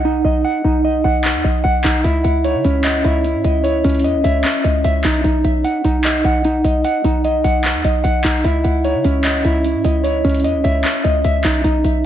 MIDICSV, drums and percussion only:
0, 0, Header, 1, 2, 480
1, 0, Start_track
1, 0, Key_signature, 4, "minor"
1, 0, Tempo, 400000
1, 534, Time_signature, 4, 2, 24, 8
1, 14470, End_track
2, 0, Start_track
2, 0, Title_t, "Drums"
2, 1494, Note_on_c, 9, 39, 116
2, 1614, Note_off_c, 9, 39, 0
2, 2214, Note_on_c, 9, 39, 100
2, 2334, Note_off_c, 9, 39, 0
2, 2453, Note_on_c, 9, 42, 81
2, 2573, Note_off_c, 9, 42, 0
2, 2693, Note_on_c, 9, 42, 82
2, 2813, Note_off_c, 9, 42, 0
2, 2933, Note_on_c, 9, 42, 66
2, 3053, Note_off_c, 9, 42, 0
2, 3174, Note_on_c, 9, 42, 73
2, 3294, Note_off_c, 9, 42, 0
2, 3414, Note_on_c, 9, 39, 124
2, 3414, Note_on_c, 9, 42, 75
2, 3534, Note_off_c, 9, 39, 0
2, 3534, Note_off_c, 9, 42, 0
2, 3653, Note_on_c, 9, 42, 68
2, 3773, Note_off_c, 9, 42, 0
2, 3893, Note_on_c, 9, 42, 79
2, 4013, Note_off_c, 9, 42, 0
2, 4133, Note_on_c, 9, 42, 84
2, 4253, Note_off_c, 9, 42, 0
2, 4373, Note_on_c, 9, 42, 84
2, 4493, Note_off_c, 9, 42, 0
2, 4613, Note_on_c, 9, 42, 66
2, 4673, Note_off_c, 9, 42, 0
2, 4673, Note_on_c, 9, 42, 62
2, 4733, Note_off_c, 9, 42, 0
2, 4733, Note_on_c, 9, 42, 62
2, 4793, Note_off_c, 9, 42, 0
2, 4793, Note_on_c, 9, 42, 60
2, 4853, Note_off_c, 9, 42, 0
2, 4853, Note_on_c, 9, 42, 67
2, 4973, Note_off_c, 9, 42, 0
2, 5093, Note_on_c, 9, 42, 76
2, 5213, Note_off_c, 9, 42, 0
2, 5333, Note_on_c, 9, 42, 73
2, 5334, Note_on_c, 9, 39, 118
2, 5453, Note_off_c, 9, 42, 0
2, 5454, Note_off_c, 9, 39, 0
2, 5573, Note_on_c, 9, 42, 72
2, 5693, Note_off_c, 9, 42, 0
2, 5813, Note_on_c, 9, 42, 77
2, 5933, Note_off_c, 9, 42, 0
2, 6053, Note_on_c, 9, 42, 49
2, 6053, Note_on_c, 9, 46, 85
2, 6054, Note_on_c, 9, 39, 99
2, 6173, Note_off_c, 9, 42, 0
2, 6173, Note_off_c, 9, 46, 0
2, 6173, Note_on_c, 9, 42, 86
2, 6174, Note_off_c, 9, 39, 0
2, 6293, Note_off_c, 9, 42, 0
2, 6294, Note_on_c, 9, 42, 80
2, 6414, Note_off_c, 9, 42, 0
2, 6534, Note_on_c, 9, 42, 80
2, 6654, Note_off_c, 9, 42, 0
2, 6774, Note_on_c, 9, 42, 65
2, 6894, Note_off_c, 9, 42, 0
2, 7014, Note_on_c, 9, 42, 75
2, 7134, Note_off_c, 9, 42, 0
2, 7253, Note_on_c, 9, 42, 74
2, 7254, Note_on_c, 9, 39, 121
2, 7373, Note_off_c, 9, 42, 0
2, 7374, Note_off_c, 9, 39, 0
2, 7494, Note_on_c, 9, 42, 66
2, 7614, Note_off_c, 9, 42, 0
2, 7734, Note_on_c, 9, 42, 77
2, 7854, Note_off_c, 9, 42, 0
2, 7974, Note_on_c, 9, 42, 88
2, 8094, Note_off_c, 9, 42, 0
2, 8214, Note_on_c, 9, 42, 81
2, 8334, Note_off_c, 9, 42, 0
2, 8454, Note_on_c, 9, 42, 77
2, 8574, Note_off_c, 9, 42, 0
2, 8694, Note_on_c, 9, 42, 66
2, 8814, Note_off_c, 9, 42, 0
2, 8933, Note_on_c, 9, 42, 80
2, 9053, Note_off_c, 9, 42, 0
2, 9173, Note_on_c, 9, 42, 72
2, 9174, Note_on_c, 9, 39, 122
2, 9293, Note_off_c, 9, 42, 0
2, 9294, Note_off_c, 9, 39, 0
2, 9414, Note_on_c, 9, 42, 72
2, 9534, Note_off_c, 9, 42, 0
2, 9654, Note_on_c, 9, 42, 77
2, 9774, Note_off_c, 9, 42, 0
2, 9893, Note_on_c, 9, 46, 89
2, 9894, Note_on_c, 9, 39, 100
2, 10013, Note_off_c, 9, 46, 0
2, 10014, Note_off_c, 9, 39, 0
2, 10134, Note_on_c, 9, 42, 81
2, 10254, Note_off_c, 9, 42, 0
2, 10374, Note_on_c, 9, 42, 84
2, 10494, Note_off_c, 9, 42, 0
2, 10614, Note_on_c, 9, 42, 65
2, 10734, Note_off_c, 9, 42, 0
2, 10854, Note_on_c, 9, 42, 73
2, 10974, Note_off_c, 9, 42, 0
2, 11094, Note_on_c, 9, 39, 124
2, 11094, Note_on_c, 9, 42, 73
2, 11214, Note_off_c, 9, 39, 0
2, 11214, Note_off_c, 9, 42, 0
2, 11334, Note_on_c, 9, 42, 65
2, 11454, Note_off_c, 9, 42, 0
2, 11574, Note_on_c, 9, 42, 78
2, 11694, Note_off_c, 9, 42, 0
2, 11814, Note_on_c, 9, 42, 90
2, 11934, Note_off_c, 9, 42, 0
2, 12054, Note_on_c, 9, 42, 79
2, 12174, Note_off_c, 9, 42, 0
2, 12294, Note_on_c, 9, 42, 64
2, 12354, Note_off_c, 9, 42, 0
2, 12354, Note_on_c, 9, 42, 64
2, 12414, Note_off_c, 9, 42, 0
2, 12414, Note_on_c, 9, 42, 61
2, 12474, Note_off_c, 9, 42, 0
2, 12474, Note_on_c, 9, 42, 59
2, 12534, Note_off_c, 9, 42, 0
2, 12534, Note_on_c, 9, 42, 67
2, 12654, Note_off_c, 9, 42, 0
2, 12774, Note_on_c, 9, 42, 80
2, 12894, Note_off_c, 9, 42, 0
2, 13014, Note_on_c, 9, 39, 120
2, 13014, Note_on_c, 9, 42, 73
2, 13134, Note_off_c, 9, 39, 0
2, 13134, Note_off_c, 9, 42, 0
2, 13253, Note_on_c, 9, 42, 75
2, 13373, Note_off_c, 9, 42, 0
2, 13493, Note_on_c, 9, 42, 76
2, 13613, Note_off_c, 9, 42, 0
2, 13733, Note_on_c, 9, 39, 97
2, 13733, Note_on_c, 9, 42, 49
2, 13733, Note_on_c, 9, 46, 84
2, 13853, Note_off_c, 9, 39, 0
2, 13853, Note_off_c, 9, 42, 0
2, 13853, Note_off_c, 9, 46, 0
2, 13854, Note_on_c, 9, 42, 87
2, 13974, Note_off_c, 9, 42, 0
2, 13974, Note_on_c, 9, 42, 81
2, 14094, Note_off_c, 9, 42, 0
2, 14214, Note_on_c, 9, 42, 81
2, 14334, Note_off_c, 9, 42, 0
2, 14470, End_track
0, 0, End_of_file